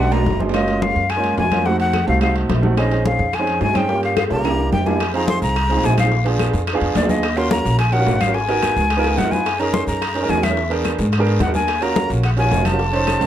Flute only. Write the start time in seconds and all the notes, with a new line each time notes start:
0.00 F#5
0.12 A#5
0.54 D#5
0.82 F5
1.10 G#5
1.39 G#5
1.66 F#5
1.80 F#5
2.08 F5
2.22 F5
2.79 D#5
3.07 F5
3.35 G#5
3.62 G#5
3.77 G5
4.04 F5
4.18 F5
4.32 A#5
4.73 G5
4.86 G#5
5.15 A#5
5.29 C6
5.43 A#5
5.85 G#5
5.99 F5
6.96 D5
7.10 D#5
7.37 C6
7.51 A#5
7.79 G#5
7.93 F#5
8.21 F5
8.34 G#5
9.18 F#5
9.31 G#5
9.60 A#5
9.74 C6
9.87 A#5
10.30 G#5
10.43 E5
11.41 F#5
11.55 G#5
11.83 A#5
12.25 F#5
12.38 G#5
12.66 A5